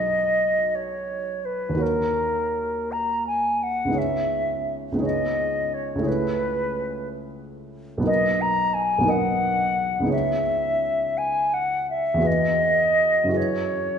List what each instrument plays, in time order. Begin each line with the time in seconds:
Already playing: grand piano B1 G#3 D#4 F#4 B4, flute D#5
0.75 flute C#5
1.45 flute B4
1.69 grand piano D#2 A#3
1.74 grand piano D#4 F#4
1.79 flute A#4, grand piano C#5
2.92 flute A#5
3.27 flute G#5
3.63 flute F#5
3.85 grand piano C#2 B3
3.90 grand piano D#4 G#4
3.94 grand piano C#5, flute E5
4.92 grand piano C#2 B3
4.97 grand piano D#4 G#4
5.01 grand piano C#5, flute D#5
5.74 flute C#5
5.95 grand piano C#2 A3
6.00 grand piano E4 G#4
6.05 flute B4, grand piano C#5
7.98 grand piano B1 B3
8.03 grand piano D#4 A#4
8.07 grand piano D#5, flute D#5
8.41 flute A#5
8.74 flute G#5
8.98 grand piano B1 B3
9.03 grand piano D#4 A#4
9.08 grand piano D#5, flute F#5
10.00 grand piano C#2 B3
10.04 grand piano D#4 G#4
10.10 grand piano C#5, flute E5
11.18 flute G#5
11.53 flute F#5
11.90 flute E5
12.14 grand piano E2 B3
12.19 grand piano F#4 G#4
12.24 grand piano B4, flute D#5
13.24 grand piano F#2 E4
13.29 grand piano F#4 G#4
13.34 grand piano B4, flute C#5